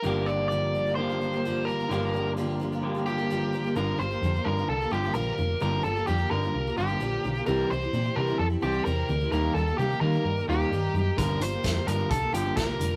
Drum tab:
HH |--------|--------|--------|--------|
SD |--------|--------|--------|--------|
BD |--------|--------|--------|--------|

HH |--------|--------|xxxxxxxx|
SD |--------|--------|--o---o-|
BD |--------|--------|o-o-o-o-|